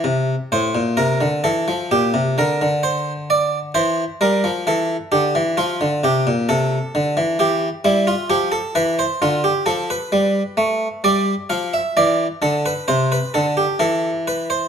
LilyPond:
<<
  \new Staff \with { instrumentName = "Harpsichord" } { \time 4/4 \key f \major \tempo 4 = 65 r8 c''8 bes'8 a'8 g'8 bes'8 c''8 d''8 | c''8 bes'8 a'8 g'8 f'8 g'8 a'4 | g'8 e'16 f'16 g'16 a'16 b'16 c''16 f'16 g'16 a'16 b'4~ b'16 | d''8 f''16 e''16 d''8 a'16 b'16 c''16 b'16 a'16 g'16 a'8 b'16 c''16 | }
  \new Staff \with { instrumentName = "Harpsichord" } { \clef bass \time 4/4 \key f \major c8 a,16 bes,16 c16 d16 e16 f16 bes,16 c16 d16 d4~ d16 | e8 g16 f16 e8 d16 e16 f16 d16 c16 bes,16 c8 d16 e16 | e8 g8 f8 e8 d8 f8 g8 a8 | g8 f8 e8 d8 c8 d8 e4 | }
>>